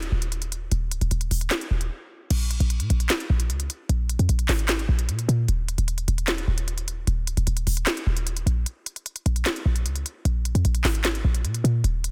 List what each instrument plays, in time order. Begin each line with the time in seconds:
Already playing: 808-style bass D#1
0.02 closed hi-hat
0.12 808-style bass D#1
0.22 closed hi-hat
0.32 closed hi-hat
0.42 closed hi-hat
0.52 closed hi-hat
0.72 808-style bass D#1, closed hi-hat
0.91 808-style bass C#1, closed hi-hat
1.01 808-style bass D#1, closed hi-hat
1.11 808-style bass D#1, closed hi-hat
1.21 closed hi-hat
1.31 808-style bass D#1, open hi-hat
1.41 closed hi-hat
1.50 snare, clap, closed hi-hat
1.61 closed hi-hat
1.71 808-style bass D#1
1.81 closed hi-hat
2.30 808-style bass A#1, closed hi-hat, crash
2.51 closed hi-hat
2.60 808-style bass A#1, closed hi-hat
2.70 closed hi-hat
2.80 808-style bass A#2, closed hi-hat
2.90 808-style bass A#1, closed hi-hat
3.00 closed hi-hat
3.09 snare, clap, closed hi-hat
3.20 closed hi-hat
3.30 808-style bass A#1
3.40 closed hi-hat
3.50 808-style bass C#2, closed hi-hat
3.60 closed hi-hat
3.70 closed hi-hat
3.89 808-style bass A#1, closed hi-hat
4.09 closed hi-hat
4.19 808-style bass F2, closed hi-hat
4.29 808-style bass A#1, closed hi-hat
4.39 closed hi-hat
4.49 808-style bass G#1, snare, clap, open hi-hat
4.59 closed hi-hat
4.68 snare, clap, closed hi-hat
4.79 closed hi-hat
4.89 808-style bass A#1
4.99 closed hi-hat
5.09 808-style bass A#2, closed hi-hat
5.19 closed hi-hat
5.28 808-style bass A#2, closed hi-hat
5.48 808-style bass D#1, closed hi-hat
5.68 closed hi-hat
5.78 808-style bass D#1, closed hi-hat
5.88 closed hi-hat
5.98 closed hi-hat
6.08 808-style bass D#1, closed hi-hat
6.18 closed hi-hat
6.27 snare, clap, closed hi-hat
6.38 closed hi-hat
6.48 808-style bass D#1
6.58 closed hi-hat
6.68 closed hi-hat
6.78 closed hi-hat
6.88 closed hi-hat
7.07 808-style bass D#1, closed hi-hat
7.27 808-style bass C#1, closed hi-hat
7.37 808-style bass D#1, closed hi-hat
7.47 808-style bass D#1, closed hi-hat
7.57 closed hi-hat
7.67 808-style bass D#1, open hi-hat
7.77 closed hi-hat
7.86 snare, clap, closed hi-hat
7.97 closed hi-hat
8.07 808-style bass D#1
8.17 closed hi-hat
8.27 closed hi-hat
8.37 closed hi-hat
8.46 808-style bass A#1, closed hi-hat
8.66 closed hi-hat
8.86 closed hi-hat
8.96 closed hi-hat
9.06 closed hi-hat
9.16 closed hi-hat
9.26 808-style bass A#1, closed hi-hat
9.36 closed hi-hat
9.45 snare, clap, closed hi-hat
9.56 closed hi-hat
9.66 808-style bass A#1
9.76 closed hi-hat
9.85 808-style bass C#2, closed hi-hat
9.96 closed hi-hat
10.06 closed hi-hat
10.25 808-style bass A#1, closed hi-hat
10.45 closed hi-hat
10.55 808-style bass F2, closed hi-hat
10.65 808-style bass A#1, closed hi-hat
10.75 closed hi-hat
10.84 808-style bass G#1, snare, clap, open hi-hat
10.95 closed hi-hat
11.04 snare, clap, closed hi-hat
11.15 closed hi-hat
11.24 808-style bass A#1
11.35 closed hi-hat
11.44 808-style bass A#2, closed hi-hat
11.54 closed hi-hat
11.64 808-style bass A#2, closed hi-hat
11.84 808-style bass D#1, closed hi-hat
12.04 closed hi-hat